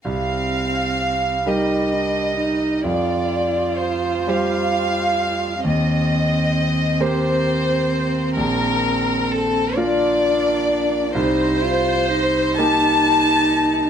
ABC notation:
X:1
M:6/8
L:1/8
Q:3/8=43
K:Cdor
V:1 name="Violin section"
f3 e3 | d2 c f3 | e3 c3 | B2 A d3 |
c3 a3 |]
V:2 name="Cello"
C3 E D E | F6 | C6- | C3 D3 |
E F E4 |]
V:3 name="Grand piano"
C,,3 [G,GB]3 | F,,3 [G,Gc]3 | E,,3 [B,Gc]3 | B,,,3 [B,FB]3 |
C,,3 [B,EG]3 |]